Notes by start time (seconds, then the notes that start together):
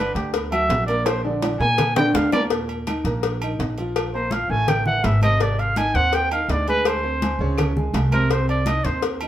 0.00 D3 D4 B4 D5
0.15 D2 G4, cowbell, high conga
0.34 B3 B4 B5, cowbell, high conga, low agogo
0.52 F#3 F#4 E5 F#5, high conga, low agogo, claves
0.69 A#1, cowbell, high conga, low timbale
0.86 A#3 A#4 D5 A#5, high conga, low agogo
1.06 C5, cowbell, high conga, high timbale, low agogo, claves
1.24 D3 D4 G#4 D5, high conga
1.42 cowbell, high conga, high timbale, low agogo
1.60 A#2 A#3 A#4 G#5 A#5, low timbale
1.78 cowbell, high conga, low conga, low timbale, low agogo, claves
1.96 D3 D4 D5 G5, high bongo, high conga, low conga, low timbale
2.14 D#2 F5, cowbell, high bongo, high conga, low timbale, low agogo
2.32 A#3 A#4 D5 A#5, low bongo, high conga, low timbale, low agogo, claves
2.50 A#2 A#3 A#4, cowbell, high conga, low agogo
2.69 high conga, low agogo
2.87 D#3 D#4 D#5, cowbell, high conga, low timbale, low agogo, claves
3.04 A#1 A#3 A#4 A#5, cowbell, high conga
3.23 cowbell, high conga, low agogo
3.42 D#3 D#4 D#5, high conga, low agogo, claves
3.59 A#1, cowbell, high conga, low timbale
3.78 F3 F4 F5, high conga, low agogo
3.96 cowbell, high conga, low agogo, claves
4.14 A#3 A#4 C5 A#5, high conga
4.31 F3 F4 F5, cowbell, high conga, low timbale, low agogo
4.50 A1 A2 A3 A4 G#5
4.68 G5, cowbell, high conga, low conga, low agogo, claves
4.86 E3 E4 E5 F#5, high conga, low conga
5.04 G#1 E5, cowbell, high conga, low timbale, low agogo
5.22 C3 C4 C5 D#5, high conga, low agogo, claves
5.40 C3 C4 C5 D5, cowbell, high conga, low agogo
5.58 F5, high conga, low agogo
5.76 D#3 D#4 D#5 G#5, cowbell, high conga, low timbale, low agogo, claves
5.94 D#2 C4 C5 F#5 C6, cowbell, high conga
6.13 G5, cowbell, high conga, low agogo
6.31 D#3 D#4 D#5 F5, high conga, low agogo, claves
6.49 D2 D5, cowbell, high conga, low timbale
6.67 G#3 G#4 B4 G#5, high conga, low agogo
6.85 C5, cowbell, high conga, low agogo, claves
7.04 C4 C5 C6, high conga
7.22 G#3 G#4 G#5, cowbell, high conga, low timbale, low agogo
7.39 C#2 C#3 C#4 C#5
7.58 cowbell, high conga, low conga, low agogo, claves
7.77 G#3 G#4 G#5, high conga, low conga
7.93 C2, cowbell, high conga, low timbale, low agogo
8.12 C3 C4 A#4 C5, high conga, low agogo, claves
8.30 C3 C4 C5, cowbell, high conga, low agogo
8.48 D5, high conga, low agogo
8.66 D#3 D#4 D#5, cowbell, high conga, low timbale, low agogo, claves
8.84 D#2 C4 C5 C6, cowbell, high conga
9.02 cowbell, high conga, low agogo
9.21 D#3 D#4 D#5, high conga, low agogo, claves